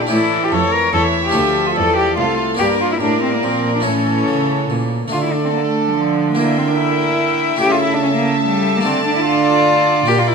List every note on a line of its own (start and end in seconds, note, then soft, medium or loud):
0.00 0.11 D3 soft
0.00 0.10 D4 medium
0.00 0.50 D5 soft
0.07 0.92 E3 medium
0.07 1.28 A3 soft
0.07 1.29 C#4 soft
0.07 1.30 E4 soft
0.11 0.49 A2 medium
0.11 0.48 A2 soft
0.11 0.45 E4 medium
0.11 0.53 A4 soft
0.43 0.53 G4 medium
0.52 0.89 F2 soft
0.52 0.91 F2 medium
0.52 0.74 A4 medium
0.52 0.93 C#5 soft
0.52 0.92 C#5 soft
0.73 0.93 A#4 medium
0.93 1.30 E2 soft
0.93 1.32 E2 medium
0.93 1.34 E3 soft
0.93 1.01 A4 medium
0.93 1.34 C#5 medium
0.93 1.76 E5 soft
1.24 1.68 G4 medium
1.29 1.72 A3 soft
1.29 2.54 D4 soft
1.29 2.54 F4 soft
1.34 1.72 D2 soft
1.34 1.73 D2 medium
1.34 2.17 F3 medium
1.34 1.75 A4 soft
1.66 1.74 F4 medium
1.75 2.14 E2 medium
1.75 2.14 E2 soft
1.75 1.96 A4 medium
1.75 2.17 A4 soft
1.75 2.18 D5 soft
1.97 2.17 G4 medium
2.17 2.56 C2 medium
2.17 2.55 C2 soft
2.17 2.59 A3 soft
2.17 2.38 F4 medium
2.17 2.59 A4 soft
2.17 2.59 F5 soft
2.55 3.79 A#3 soft
2.55 3.80 D4 soft
2.55 3.81 G4 soft
2.55 2.98 D5 soft
2.59 2.98 G2 medium
2.59 2.97 G2 soft
2.59 2.98 G3 medium
2.59 2.67 G4 medium
2.59 2.98 A#4 soft
2.81 2.90 F4 medium
2.92 2.96 E4 medium
3.00 3.42 A2 soft
3.00 3.39 A2 soft
3.00 3.42 G3 soft
3.00 3.22 D4 medium
3.00 3.84 A#4 soft
3.00 3.83 D5 medium
3.22 3.36 C4 medium
3.34 3.45 A#3 soft
3.43 3.84 A#2 soft
3.43 3.81 A#2 soft
3.43 3.85 F3 soft
3.43 3.74 C4 medium
3.75 3.79 D4 medium
3.80 4.27 A2 soft
3.80 5.06 A3 soft
3.80 5.07 C#4 soft
3.80 5.08 E4 soft
3.85 4.23 A2 soft
3.85 4.92 E3 soft
3.85 4.68 C#4 medium
3.85 4.92 A4 soft
3.85 4.92 C#5 soft
4.27 4.69 C#3 soft
4.27 4.66 C#3 soft
4.69 5.11 A#2 soft
4.69 5.08 A#2 soft
5.08 6.31 A3 soft
5.08 6.32 D4 soft
5.12 7.57 D3 soft
5.12 5.22 F4 medium
5.12 6.33 A4 soft
5.12 6.33 D5 soft
5.24 5.34 E4 soft
5.32 5.46 D4 medium
5.45 5.54 C4 soft
5.54 5.64 A#3 medium
5.66 5.85 A3 soft
5.86 5.94 G3 soft
5.95 6.29 F3 medium
6.27 6.38 A3 medium
6.35 7.56 A#3 soft
6.35 6.59 A#3 medium
6.35 7.57 E4 soft
6.35 7.58 A#4 soft
6.35 8.81 E5 soft
6.35 7.59 G5 soft
6.57 6.69 C4 medium
6.68 6.77 D4 medium
6.78 7.59 E4 medium
7.57 8.79 A3 soft
7.57 8.80 E4 soft
7.57 7.73 G4 medium
7.61 8.83 C#3 medium
7.61 8.81 C#3 soft
7.61 10.04 A4 medium
7.61 10.09 A5 medium
7.71 7.81 F4 medium
7.82 7.95 E4 medium
7.94 8.02 D4 medium
8.03 8.07 C#4 medium
8.14 8.37 A#3 medium
8.36 8.44 A3 soft
8.45 8.78 G3 medium
8.77 8.87 A#3 medium
8.81 10.06 D3 medium
8.81 10.02 A3 soft
8.81 10.03 D4 soft
8.81 10.35 D5 soft
8.85 10.04 D3 soft
8.85 9.04 C4 medium
9.05 9.15 D4 medium
9.16 9.24 E4 medium
9.25 10.09 F4 medium
10.06 10.35 A#2 medium
10.06 10.35 A#2 soft
10.06 10.35 A#3 soft
10.06 10.35 D4 soft
10.06 10.20 G4 medium
10.06 10.35 A#4 medium
10.06 10.35 G5 medium
10.19 10.29 F4 medium
10.28 10.35 E4 medium